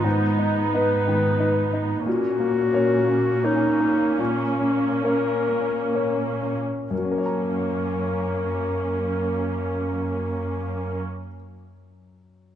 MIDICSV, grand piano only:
0, 0, Header, 1, 2, 480
1, 0, Start_track
1, 0, Key_signature, 6, "major"
1, 0, Tempo, 697674
1, 32, Time_signature, 3, 2, 24, 8
1, 513, Tempo, 662983
1, 1953, Tempo, 726392
1, 2913, Tempo, 875912
1, 3873, Tempo, 963082
1, 5313, Tempo, 946372
1, 7202, End_track
2, 0, Start_track
2, 0, Title_t, "Grand piano"
2, 0, Program_c, 0, 0
2, 0, Control_c, 0, 64, 127
2, 0, Note_on_c, 0, 51, 28
2, 28, Note_on_c, 0, 44, 35
2, 46, Control_c, 0, 64, 0
2, 153, Control_c, 0, 64, 127
2, 176, Note_off_c, 0, 51, 0
2, 267, Note_on_c, 0, 63, 29
2, 502, Note_off_c, 0, 63, 0
2, 512, Note_on_c, 0, 63, 26
2, 513, Note_on_c, 0, 71, 31
2, 731, Note_off_c, 0, 63, 0
2, 731, Note_off_c, 0, 71, 0
2, 753, Note_on_c, 0, 51, 29
2, 986, Note_on_c, 0, 63, 29
2, 990, Note_on_c, 0, 71, 30
2, 1134, Note_off_c, 0, 51, 0
2, 1202, Note_off_c, 0, 63, 0
2, 1204, Note_off_c, 0, 71, 0
2, 1228, Note_on_c, 0, 63, 30
2, 1435, Note_off_c, 0, 44, 0
2, 1466, Note_off_c, 0, 63, 0
2, 1467, Note_on_c, 0, 46, 42
2, 1479, Control_c, 0, 64, 0
2, 1573, Control_c, 0, 64, 127
2, 1711, Note_on_c, 0, 58, 33
2, 1951, Note_on_c, 0, 61, 31
2, 1957, Note_on_c, 0, 70, 30
2, 1958, Note_on_c, 0, 73, 35
2, 2091, Note_off_c, 0, 58, 0
2, 2158, Note_off_c, 0, 61, 0
2, 2161, Note_off_c, 0, 70, 0
2, 2162, Note_off_c, 0, 73, 0
2, 2182, Note_on_c, 0, 61, 31
2, 2409, Note_off_c, 0, 61, 0
2, 2419, Note_on_c, 0, 61, 27
2, 2419, Note_on_c, 0, 70, 31
2, 2422, Note_on_c, 0, 73, 32
2, 2637, Note_off_c, 0, 61, 0
2, 2637, Note_off_c, 0, 70, 0
2, 2638, Note_off_c, 0, 73, 0
2, 2656, Note_on_c, 0, 58, 30
2, 2887, Note_off_c, 0, 46, 0
2, 2911, Note_on_c, 0, 46, 42
2, 2925, Control_c, 0, 64, 0
2, 3042, Control_c, 0, 64, 127
2, 3044, Note_off_c, 0, 58, 0
2, 3140, Note_on_c, 0, 61, 32
2, 3373, Note_off_c, 0, 61, 0
2, 3381, Note_on_c, 0, 61, 29
2, 3383, Note_on_c, 0, 70, 28
2, 3386, Note_on_c, 0, 73, 34
2, 3602, Note_off_c, 0, 61, 0
2, 3603, Note_off_c, 0, 70, 0
2, 3604, Note_off_c, 0, 73, 0
2, 3623, Note_on_c, 0, 58, 25
2, 3872, Note_on_c, 0, 61, 23
2, 3876, Note_on_c, 0, 70, 22
2, 3876, Note_on_c, 0, 73, 27
2, 4014, Note_off_c, 0, 58, 0
2, 4094, Note_off_c, 0, 61, 0
2, 4095, Note_off_c, 0, 70, 0
2, 4096, Note_off_c, 0, 73, 0
2, 4111, Note_on_c, 0, 61, 22
2, 4336, Note_off_c, 0, 46, 0
2, 4355, Note_off_c, 0, 61, 0
2, 4355, Note_on_c, 0, 42, 26
2, 4369, Control_c, 0, 64, 0
2, 4390, Note_on_c, 0, 54, 25
2, 4425, Note_on_c, 0, 61, 26
2, 4460, Note_on_c, 0, 70, 28
2, 4493, Note_on_c, 0, 73, 24
2, 4506, Control_c, 0, 64, 127
2, 4529, Note_on_c, 0, 82, 24
2, 6409, Note_off_c, 0, 42, 0
2, 6444, Note_off_c, 0, 54, 0
2, 6480, Note_off_c, 0, 61, 0
2, 6515, Note_off_c, 0, 70, 0
2, 6549, Note_off_c, 0, 73, 0
2, 6586, Note_off_c, 0, 82, 0
2, 7202, End_track
0, 0, End_of_file